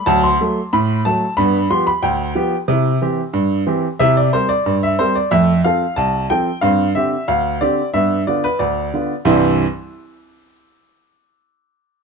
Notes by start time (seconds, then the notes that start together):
0.06 D2 F#3 A5
0.24 C6
0.41 F#3 A3 A4
0.73 A2 B5
1.05 F#3 A3 A4 A5
1.37 G2 B3 B5
1.70 F3 B3 G4 C6
1.87 B5
2.03 D2 G5
2.35 F3 B3 G4
2.68 C3 E4
3.01 E3 C4 G4
3.33 G2
3.67 E3 C4 G4
3.99 C3 E4 E5
4.17 D5
4.33 G3 C4 A#4 C5
4.49 D5
4.66 G2
4.83 E5
4.99 G3 C4 A#4 C5
5.15 D5
5.31 F2 A3 E5
5.64 F3 C4 A4 F5
5.96 C2 A5
6.30 F3 C4 A4 G5
6.61 G2 C4 F5
6.95 D3 C4 G4 E5
7.28 D2 F5
7.61 D3 C4 G4 D5
7.94 G2 B3 E5
8.27 D3 B3 F4 D5
8.44 B4
8.59 D2 D5
8.94 D3 B3 F4
9.25 C2 G2 E3 G3 C4 E4 C5